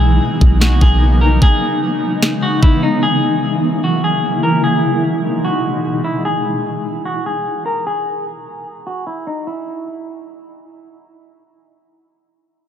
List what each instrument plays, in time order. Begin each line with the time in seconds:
Already playing: 808-style bass B1, ambient pad C#3 F#3 A#3 B3 D#4, clean electric guitar G#4
0.41 808-style bass B1, kick
0.61 clean electric guitar F#4, snare
0.81 808-style bass B1, clean electric guitar G#4, kick
1.21 clean electric guitar A#4
1.42 ambient pad E3 G#3 B3, clean electric guitar G#4, kick
2.23 snare
2.43 clean electric guitar F#4
2.62 clean electric guitar E4, kick
2.83 clean electric guitar D#4
3.03 ambient pad F#3 A#3 E4, clean electric guitar G#4
3.84 clean electric guitar F#4
4.04 clean electric guitar G#4
4.43 clean electric guitar A#4
4.64 ambient pad B2 G#3 D#4, clean electric guitar G#4
5.45 clean electric guitar F#4
6.04 clean electric guitar E4
6.25 clean electric guitar G#4
7.05 clean electric guitar F#4
7.26 clean electric guitar G#4
7.66 clean electric guitar A#4
7.87 clean electric guitar G#4
8.87 clean electric guitar F#4
9.07 clean electric guitar E4
9.27 clean electric guitar D#4
9.47 clean electric guitar E4